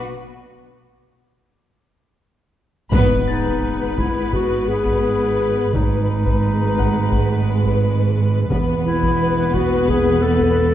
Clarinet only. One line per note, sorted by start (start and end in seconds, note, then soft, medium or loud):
3.27 4.00 D#4 soft
3.98 4.33 E4 soft
4.33 4.70 F#4 medium
4.68 5.74 G#4 medium
5.74 8.13 D#4 medium
8.85 9.56 E4 medium
9.54 9.90 F#4 medium
9.89 10.24 G#4 medium
10.22 10.74 A4 medium